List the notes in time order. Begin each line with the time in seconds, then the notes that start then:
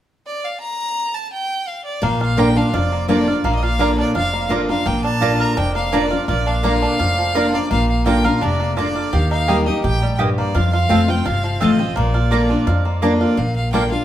0.26 D5
0.44 F5
0.60 A#5
1.14 A5
1.32 G5
1.67 F5
1.85 D5
2.02 A#1 A#2 A#3 F5
2.21 F4 F5
2.37 D3 A#3 D4 F4 D5 G5 A#5
2.56 D4 F4 F5
2.73 F1 F2 F4 D5
2.92 A#3
3.08 D3 A#3 D4 F4 D5 A#5
3.27 D4 F4
3.44 A#1 A#2 A#3 F5
3.55 D#5
3.63 F4 F5
3.78 D3 A#3 D4 F4 A#4 D5 A#5
3.95 D4 C#5 D5
4.15 F1 F2 F4 F5
4.33 A#3
4.49 D3 A#3 D4 F4 D5 A#5
4.69 A#3 D4 F4 F5
4.86 A#1 A#2 A#3 G5
5.04 D4 A5
5.21 D3 A#3 D4 F4 D5 A#5
5.40 A#4 A#5
5.57 F1 F2 D4 G5
5.75 A#3 F5
5.92 D3 A#3 D4 F4 D5 A#5
6.11 D4 F4
6.28 A#1 A#2 F4 D5
6.46 D4 F5
6.63 D3 A#3 D4 F4 D5 F5 A#5
6.82 D4
6.99 F1 F2 F4
7.18 F3
7.34 D3 A#3 D4 F4 D5 A#5
7.53 A#3 D4 F4 D5
7.71 A#1 A#2 A#3 F5
7.90 F5
8.06 D3 A#3 D4 F4 D5 G5 A#5
8.24 D4 F4 A#4 F5
8.41 F1 C3 D4 D5
8.60 A#3
8.76 D3 A#3 D4 F4 D5 A#5
8.95 F4
9.13 D#2 D#3 G4 F5
9.31 D#4 F5
9.47 G3 A#3 D#4 G4 D#5 G5
9.66 D#4 G4 D#5
9.84 A#1 A2 G4 G5
10.02 G3
10.18 G2 A#3 G4 D#5 G5
10.38 A#3 D5
10.55 F2 F4 F5
10.73 F4 F5
10.89 F1 F3 A3 C4 F4 C5 A5
11.08 C4 F4 G5
11.26 G1 C3 F4 F5
11.44 F3
11.60 A1 F3 A3 C4 F4 C5 D#5 A5
11.79 C4 F4
11.96 A#1 A#2 A#3 D5
12.14 F4
12.31 D3 A#3 D4 F4 D5 A#5
12.49 D4 F4
12.67 F2 F4
12.85 A#3
13.02 D3 A#3 D4 F4 D5 A#5
13.20 F4 D5
13.37 A#1 A#2 F5
13.56 F5
13.73 D3 A#3 D4 F4 D5 G5 A#5
13.91 D4 F4 F5